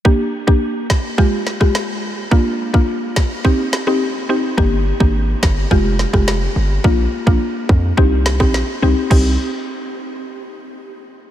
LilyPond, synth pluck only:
\new Staff \with { instrumentName = "Synth pluck" } { \time 4/4 \key c \minor \tempo 4 = 106 <bes d' g'>16 r8 <bes d' g'>16 r4 <aes f' g'>16 r8 <aes f' g'>16 r4 | <bes d' f'>16 r8 <bes d' f'>16 r4 <c' ees' g'>16 r8 <c' ees' g'>16 r8 <c' ees' g'>16 r16 | <bes d' g'>16 r8 <bes d' g'>16 r4 <aes f' g'>16 r8 <aes f' g'>16 r4 | <bes d' f'>16 r8 <bes d' f'>16 r4 <c' ees' g'>16 r8 <c' ees' g'>16 r8 <c' ees' g'>16 r16 |
<c' ees' g'>8 r2. r8 | }